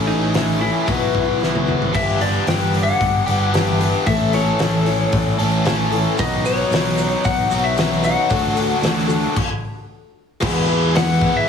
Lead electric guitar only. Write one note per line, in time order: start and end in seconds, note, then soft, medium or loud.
0.07 0.57 D#4 loud
0.61 1.63 E4 medium
1.95 2.21 E5 medium
2.21 2.46 D5 medium
2.48 2.81 G5 medium
2.83 3.70 F#5 medium
3.70 4.07 E5 medium
4.07 4.32 E5 loud
4.34 5.36 C#5 medium
6.20 6.45 D#5 medium
6.46 7.28 C#5 medium
7.25 7.66 F#5 loud
7.64 8.01 E5 medium
8.05 9.06 F#5 medium
10.97 11.37 F#5 loud
11.37 11.49 E5 loud